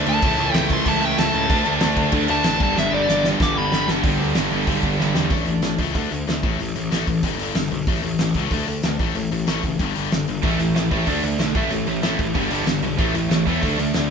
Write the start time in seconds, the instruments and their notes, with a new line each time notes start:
Already playing: overdriven electric guitar D3 A3 D4
0.06 picked electric bass D2, distorted electric guitar D3 A3 D4, lead electric guitar A5, crash
0.22 picked electric bass C#2, distorted electric guitar A2 E3 A3, kick, crash
0.38 picked electric bass C#2, distorted electric guitar A2 E3 A3, crash
0.53 picked electric bass C#2, distorted electric guitar A2 E3 A3, lead electric guitar G5, snare, crash
0.69 distorted electric guitar A2 E3 A3, lead electric guitar C6, kick, crash
0.85 picked electric bass C#2, distorted electric guitar A2 E3 A3, lead electric guitar A5, kick, crash
1.01 picked electric bass C#2, distorted electric guitar A2 E3 A3, lead electric guitar G5, crash
1.17 picked electric bass C#2, distorted electric guitar A2 E3 A3, lead electric guitar A5, snare, crash
1.33 picked electric bass C#2, distorted electric guitar A2 E3 A3, crash
1.49 picked electric bass D2, distorted electric guitar D3 A3 D4, kick, crash
1.64 picked electric bass D2, distorted electric guitar D3 A3 D4, crash
1.80 picked electric bass D2, distorted electric guitar D3 A3 D4, snare, crash
1.96 distorted electric guitar D3 A3 D4, kick, crash
2.12 picked electric bass D2, distorted electric guitar D3 A3 D4, kick, crash
2.28 picked electric bass D2, distorted electric guitar D3 A3 D4, lead electric guitar A5, crash
2.44 picked electric bass A1, distorted electric guitar D3 A3 D4, snare, crash
2.60 picked electric bass G1, distorted electric guitar G2 D3 G3, lead electric guitar A5, kick, crash
2.75 picked electric bass G1, distorted electric guitar G2 D3 G3, lead electric guitar E5, snare
2.92 picked electric bass G1, distorted electric guitar G2 D3 G3, lead electric guitar D5
3.08 picked electric bass G1, distorted electric guitar G2 D3 G3, snare
3.24 distorted electric guitar G2 D3 G3, snare
3.40 picked electric bass G1, distorted electric guitar G2 D3 G3, lead electric guitar D6, kick, snare
3.56 picked electric bass G1, distorted electric guitar G2 D3 G3, lead electric guitar B5
3.71 picked electric bass G1, distorted electric guitar G2 D3 G3, snare
3.87 picked electric bass G1, distorted electric guitar G2 D3 G3, snare
4.03 picked electric bass G1, distorted electric guitar G2 D3 G3, kick, open hi-hat
4.20 picked electric bass D2
4.35 picked electric bass G1, distorted electric guitar G2 D3 G3, snare, open hi-hat
4.50 picked electric bass G1, distorted electric guitar G2 D3 G3
4.66 picked electric bass B1, distorted electric guitar G2 D3 G3, kick, open hi-hat
4.83 picked electric bass G1, kick
4.98 picked electric bass G1, distorted electric guitar G2 D3 G3, snare
5.14 picked electric bass E2, distorted electric guitar G2 D3 G3, snare
5.30 picked electric bass A1, distorted electric guitar A2 E3 A3, kick, open hi-hat
5.46 picked electric bass A1, distorted electric guitar A2 E3, open hi-hat
5.62 picked electric bass A1, distorted electric guitar A2 E3, snare, open hi-hat
5.78 picked electric bass C#2, distorted electric guitar A2 E3 A3, kick, open hi-hat
5.95 picked electric bass D2, distorted electric guitar D3 A3 D4, kick, open hi-hat
6.11 picked electric bass D2, distorted electric guitar D3 A3, open hi-hat
6.27 picked electric bass D2, distorted electric guitar D3 A3, snare, open hi-hat
6.43 picked electric bass A1, distorted electric guitar A2 E3 A3, kick, open hi-hat
6.59 picked electric bass A1, distorted electric guitar A2 E3, open hi-hat
6.76 picked electric bass A1, distorted electric guitar A2 E3, open hi-hat
6.91 picked electric bass A1, distorted electric guitar A2 E3 A3, snare, open hi-hat
7.07 picked electric bass A1, distorted electric guitar A2 E3, kick, open hi-hat
7.23 picked electric bass G1, distorted electric guitar G2 D3 G3, kick, open hi-hat
7.38 picked electric bass G1, distorted electric guitar G2 D3 G3, open hi-hat
7.55 picked electric bass G1, distorted electric guitar G2 D3, snare, open hi-hat
7.71 picked electric bass B1, distorted electric guitar G2 D3, open hi-hat
7.87 picked electric bass A1, distorted electric guitar A2 E3 A3, kick, open hi-hat
8.03 picked electric bass A1, distorted electric guitar A2 E3, open hi-hat
8.19 picked electric bass A1, distorted electric guitar A2 E3, snare, open hi-hat
8.34 picked electric bass C#2, distorted electric guitar A2 E3 A3, kick, open hi-hat
8.50 picked electric bass D2, distorted electric guitar D3 A3 D4, kick, open hi-hat
8.68 picked electric bass D2, distorted electric guitar D3 A3, open hi-hat
8.83 picked electric bass D2, distorted electric guitar D3 A3, snare, open hi-hat
8.99 picked electric bass A1, distorted electric guitar A2 E3 A3, kick, open hi-hat
9.15 picked electric bass A1, distorted electric guitar A2 E3, open hi-hat
9.31 picked electric bass A1, distorted electric guitar A2 E3, open hi-hat
9.47 picked electric bass A1, distorted electric guitar A2 E3 A3, snare, open hi-hat
9.63 picked electric bass F#1, distorted electric guitar A2 E3, kick, open hi-hat
9.79 picked electric bass G1, distorted electric guitar G2 D3 G3, kick, open hi-hat
9.95 picked electric bass G1, distorted electric guitar G2 D3 G3, open hi-hat
10.11 picked electric bass G1, distorted electric guitar G2 D3, snare, open hi-hat
10.28 picked electric bass G1, distorted electric guitar G2 D3, open hi-hat
10.43 picked electric bass A1, distorted electric guitar A2 E3 A3, kick, open hi-hat
10.59 picked electric bass A1, distorted electric guitar A2 E3, overdriven electric guitar A3, open hi-hat
10.75 picked electric bass A1, distorted electric guitar A2 E3, overdriven electric guitar A3, snare, open hi-hat
10.91 picked electric bass A1, distorted electric guitar A2 E3 A3, kick, open hi-hat
11.07 picked electric bass D2, distorted electric guitar D3 A3 D4, kick, open hi-hat
11.23 picked electric bass D2, distorted electric guitar D3 A3, overdriven electric guitar D4, open hi-hat
11.39 picked electric bass B1, distorted electric guitar D3 A3, overdriven electric guitar D4, snare, open hi-hat
11.55 picked electric bass A1, distorted electric guitar A2 E3 A3, kick, open hi-hat
11.70 picked electric bass A1, distorted electric guitar A2 E3, overdriven electric guitar A3, open hi-hat
11.86 picked electric bass A1, distorted electric guitar A2 E3, overdriven electric guitar A3, open hi-hat
12.02 picked electric bass A1, distorted electric guitar A2 E3 A3, snare, open hi-hat
12.19 picked electric bass A1, distorted electric guitar A2 E3, overdriven electric guitar A3, kick, open hi-hat
12.34 picked electric bass G1, distorted electric guitar G2 D3 G3, kick, open hi-hat
12.50 picked electric bass G1, distorted electric guitar G2 D3 G3, open hi-hat
12.66 picked electric bass G1, distorted electric guitar G2 D3, overdriven electric guitar G3, snare, open hi-hat
12.82 picked electric bass B1, distorted electric guitar G2 D3, overdriven electric guitar G3, open hi-hat
12.98 picked electric bass A1, distorted electric guitar A2 E3 A3, kick, open hi-hat
13.14 picked electric bass A1, distorted electric guitar A2 E3, overdriven electric guitar A3, open hi-hat
13.31 picked electric bass A1, distorted electric guitar A2 E3, overdriven electric guitar A3, snare, open hi-hat
13.47 picked electric bass E2, distorted electric guitar A2 E3 A3, kick, open hi-hat
13.63 picked electric bass D2, distorted electric guitar D3 A3 D4, kick, open hi-hat
13.78 picked electric bass D2, distorted electric guitar D3 A3, overdriven electric guitar D4, open hi-hat
13.94 picked electric bass D2, distorted electric guitar D3 A3, overdriven electric guitar D4, snare, open hi-hat